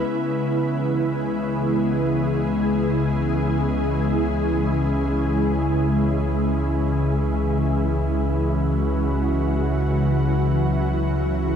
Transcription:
0.00 11.56 C#3 medium
0.00 3.98 B3 medium
0.00 11.56 E4 medium
0.00 2.01 B4 medium
0.08 11.56 C#2 medium
0.08 11.56 C#3 medium
0.08 11.56 B4 medium
0.08 11.56 B5 medium
0.25 11.56 E3 medium
0.40 9.72 G#3 medium
0.74 8.42 G#4 medium
8.11 11.56 F#4 medium
9.40 11.56 F#3 medium

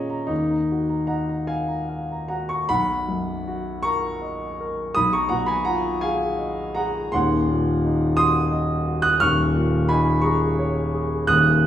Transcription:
0.00 0.26 A#2 medium
0.00 0.29 C#4 loud
0.00 0.33 G#4 soft
0.00 0.22 D#5 soft
0.00 0.10 A#5 medium
0.10 0.30 A#5 medium
0.27 2.67 D#2 soft
0.27 1.49 D#4 medium
0.51 0.83 A#5 soft
0.71 1.03 F#4 soft
0.89 1.06 A#5 soft
1.07 1.41 D#5 soft
1.07 1.46 F#5 soft
1.07 1.28 A#5 medium
1.29 1.61 A#5 soft
1.47 1.87 F5 medium
1.47 1.69 G#5 medium
1.67 2.01 A#5 soft
1.89 2.23 F5 soft
2.12 2.27 A#5 soft
2.28 2.64 F#4 soft
2.28 2.50 F#5 soft
2.28 2.49 A#5 medium
2.49 2.70 A#5 medium
2.49 2.70 C#6 medium
2.69 4.91 B1 medium
2.69 3.80 F#5 medium
2.69 3.84 B5 loud
3.08 3.70 F#2 soft
3.48 4.08 F#4 soft
3.83 4.44 A#4 soft
3.83 4.91 A#5 medium
3.83 4.94 C#6 loud
4.22 4.81 D#5 soft
4.60 4.96 A#4 soft
4.95 7.11 B1 medium
4.95 5.13 B5 medium
4.95 5.13 D#6 loud
5.13 5.27 A#5 medium
5.13 5.31 C#6 medium
5.29 5.89 B2 soft
5.29 5.47 F#5 medium
5.29 5.48 A#5 medium
5.46 5.65 G#5 medium
5.46 5.66 B5 medium
5.65 6.26 F4 soft
5.65 6.00 F#5 medium
5.65 6.03 A#5 medium
6.01 6.64 G#4 soft
6.01 6.74 F5 medium
6.01 6.77 G#5 medium
6.39 6.99 D#5 soft
6.75 7.14 G#4 soft
6.75 7.11 F#5 medium
6.75 7.13 A#5 medium
7.12 9.17 D#1 medium
7.12 9.17 D#2 medium
7.12 8.14 F#5 medium
7.12 8.16 C6 loud
7.50 8.05 A#2 medium
7.84 8.39 D#4 soft
8.17 8.73 F#4 medium
8.17 9.00 C6 medium
8.17 9.01 D#6 loud
8.52 9.07 D#5 medium
8.88 9.22 F#4 soft
9.02 9.19 D#6 medium
9.02 9.20 F#6 loud
9.20 11.26 D#1 medium
9.20 11.26 D#2 medium
9.20 9.86 C#6 medium
9.20 9.89 F6 loud
9.55 10.10 A#2 medium
9.89 10.46 D#4 medium
9.89 10.22 G#5 medium
9.89 10.24 B5 medium
10.21 10.81 G#4 medium
10.21 10.57 A#5 medium
10.21 10.58 C#6 medium
10.59 11.16 C#5 medium
10.94 11.30 G#4 medium
11.27 11.67 D#1 medium
11.27 11.67 D#2 medium
11.27 11.67 D#6 loud
11.27 11.67 F#6 loud

